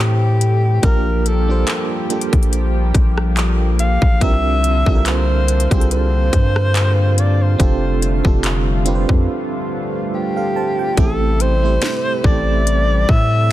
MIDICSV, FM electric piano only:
0, 0, Header, 1, 2, 480
1, 0, Start_track
1, 0, Tempo, 845070
1, 473, Time_signature, 4, 2, 24, 8
1, 7681, End_track
2, 0, Start_track
2, 0, Title_t, "FM electric piano"
2, 0, Program_c, 0, 5
2, 0, Control_c, 0, 64, 127
2, 0, Note_on_c, 0, 57, 69
2, 0, Note_on_c, 0, 60, 64
2, 0, Note_on_c, 0, 64, 64
2, 0, Note_on_c, 0, 67, 62
2, 0, Note_on_c, 0, 72, 78
2, 238, Note_off_c, 0, 57, 0
2, 240, Note_off_c, 0, 60, 0
2, 243, Note_off_c, 0, 64, 0
2, 246, Note_off_c, 0, 67, 0
2, 248, Note_off_c, 0, 72, 0
2, 468, Note_on_c, 0, 58, 89
2, 472, Note_on_c, 0, 62, 83
2, 477, Note_on_c, 0, 65, 83
2, 482, Control_c, 0, 64, 0
2, 482, Note_on_c, 0, 67, 83
2, 486, Note_on_c, 0, 70, 97
2, 565, Control_c, 0, 64, 127
2, 794, Note_off_c, 0, 58, 0
2, 796, Note_off_c, 0, 62, 0
2, 798, Note_off_c, 0, 65, 0
2, 801, Note_off_c, 0, 67, 0
2, 803, Note_off_c, 0, 70, 0
2, 839, Note_on_c, 0, 58, 70
2, 845, Note_on_c, 0, 62, 66
2, 849, Note_on_c, 0, 65, 69
2, 853, Note_on_c, 0, 67, 66
2, 858, Note_on_c, 0, 72, 85
2, 1152, Note_off_c, 0, 58, 0
2, 1155, Note_off_c, 0, 62, 0
2, 1157, Note_off_c, 0, 65, 0
2, 1159, Note_off_c, 0, 67, 0
2, 1162, Note_off_c, 0, 72, 0
2, 1189, Note_on_c, 0, 58, 69
2, 1193, Note_on_c, 0, 62, 65
2, 1198, Note_on_c, 0, 65, 66
2, 1203, Note_on_c, 0, 67, 63
2, 1208, Note_on_c, 0, 69, 81
2, 2046, Note_off_c, 0, 58, 0
2, 2048, Note_off_c, 0, 62, 0
2, 2051, Note_off_c, 0, 65, 0
2, 2053, Note_off_c, 0, 67, 0
2, 2056, Note_off_c, 0, 69, 0
2, 2387, Note_on_c, 0, 60, 94
2, 2392, Note_on_c, 0, 62, 87
2, 2396, Note_on_c, 0, 65, 86
2, 2399, Control_c, 0, 64, 0
2, 2402, Note_on_c, 0, 67, 84
2, 2407, Note_on_c, 0, 70, 103
2, 2517, Control_c, 0, 64, 127
2, 2713, Note_off_c, 0, 60, 0
2, 2716, Note_off_c, 0, 62, 0
2, 2718, Note_off_c, 0, 65, 0
2, 2721, Note_off_c, 0, 67, 0
2, 2723, Note_off_c, 0, 70, 0
2, 2757, Note_on_c, 0, 60, 77
2, 2761, Note_on_c, 0, 62, 72
2, 2766, Note_on_c, 0, 65, 72
2, 2771, Note_on_c, 0, 67, 68
2, 2775, Note_on_c, 0, 69, 66
2, 2803, Note_off_c, 0, 69, 0
2, 2812, Note_on_c, 0, 70, 78
2, 3178, Note_off_c, 0, 60, 0
2, 3180, Note_off_c, 0, 62, 0
2, 3183, Note_off_c, 0, 65, 0
2, 3186, Note_off_c, 0, 67, 0
2, 3206, Note_off_c, 0, 70, 0
2, 3237, Note_on_c, 0, 60, 76
2, 3243, Note_on_c, 0, 62, 67
2, 3247, Note_on_c, 0, 65, 71
2, 3253, Note_on_c, 0, 67, 67
2, 3257, Note_on_c, 0, 68, 65
2, 3284, Note_off_c, 0, 68, 0
2, 3294, Note_on_c, 0, 69, 81
2, 4077, Note_off_c, 0, 60, 0
2, 4080, Note_off_c, 0, 62, 0
2, 4082, Note_off_c, 0, 65, 0
2, 4085, Note_off_c, 0, 67, 0
2, 4105, Note_off_c, 0, 69, 0
2, 4308, Note_on_c, 0, 60, 96
2, 4313, Note_on_c, 0, 62, 84
2, 4317, Note_on_c, 0, 65, 86
2, 4320, Control_c, 0, 64, 0
2, 4323, Note_on_c, 0, 67, 85
2, 4328, Note_on_c, 0, 69, 99
2, 4416, Control_c, 0, 64, 127
2, 4634, Note_off_c, 0, 60, 0
2, 4636, Note_off_c, 0, 62, 0
2, 4639, Note_off_c, 0, 65, 0
2, 4641, Note_off_c, 0, 67, 0
2, 4644, Note_off_c, 0, 69, 0
2, 4678, Note_on_c, 0, 60, 72
2, 4683, Note_on_c, 0, 62, 70
2, 4688, Note_on_c, 0, 65, 68
2, 4693, Note_on_c, 0, 67, 66
2, 4697, Note_on_c, 0, 69, 82
2, 4991, Note_off_c, 0, 60, 0
2, 4994, Note_off_c, 0, 62, 0
2, 4996, Note_off_c, 0, 65, 0
2, 4999, Note_off_c, 0, 67, 0
2, 5001, Note_off_c, 0, 69, 0
2, 5028, Note_on_c, 0, 60, 87
2, 5032, Note_on_c, 0, 62, 78
2, 5038, Note_on_c, 0, 65, 79
2, 5043, Note_on_c, 0, 67, 82
2, 5048, Note_on_c, 0, 71, 76
2, 5080, Note_off_c, 0, 71, 0
2, 5085, Note_on_c, 0, 72, 100
2, 5779, Note_off_c, 0, 72, 0
2, 5886, Note_off_c, 0, 60, 0
2, 5888, Note_off_c, 0, 62, 0
2, 5888, Note_on_c, 0, 77, 69
2, 5891, Note_off_c, 0, 65, 0
2, 5892, Note_on_c, 0, 69, 59
2, 5893, Note_off_c, 0, 67, 0
2, 5990, Note_off_c, 0, 77, 0
2, 5992, Note_off_c, 0, 69, 0
2, 5998, Note_on_c, 0, 81, 72
2, 6002, Note_on_c, 0, 72, 57
2, 6119, Note_off_c, 0, 81, 0
2, 6121, Note_off_c, 0, 72, 0
2, 6129, Note_on_c, 0, 79, 66
2, 6229, Note_on_c, 0, 57, 93
2, 6234, Note_on_c, 0, 60, 86
2, 6239, Note_on_c, 0, 64, 87
2, 6240, Control_c, 0, 64, 0
2, 6243, Note_on_c, 0, 67, 90
2, 6248, Note_on_c, 0, 69, 105
2, 6339, Control_c, 0, 64, 127
2, 6354, Note_off_c, 0, 79, 0
2, 6554, Note_off_c, 0, 57, 0
2, 6557, Note_off_c, 0, 60, 0
2, 6559, Note_off_c, 0, 64, 0
2, 6562, Note_off_c, 0, 67, 0
2, 6564, Note_off_c, 0, 69, 0
2, 6600, Note_on_c, 0, 57, 72
2, 6605, Note_on_c, 0, 60, 66
2, 6609, Note_on_c, 0, 64, 71
2, 6614, Note_on_c, 0, 67, 69
2, 6619, Note_on_c, 0, 72, 82
2, 6912, Note_off_c, 0, 57, 0
2, 6915, Note_off_c, 0, 60, 0
2, 6917, Note_off_c, 0, 64, 0
2, 6919, Note_off_c, 0, 67, 0
2, 6922, Note_off_c, 0, 72, 0
2, 6949, Note_on_c, 0, 57, 73
2, 6953, Note_on_c, 0, 60, 67
2, 6959, Note_on_c, 0, 64, 73
2, 6964, Note_on_c, 0, 67, 67
2, 6968, Note_on_c, 0, 69, 83
2, 7681, Note_off_c, 0, 57, 0
2, 7681, Note_off_c, 0, 60, 0
2, 7681, Note_off_c, 0, 64, 0
2, 7681, Note_off_c, 0, 67, 0
2, 7681, Note_off_c, 0, 69, 0
2, 7681, End_track
0, 0, End_of_file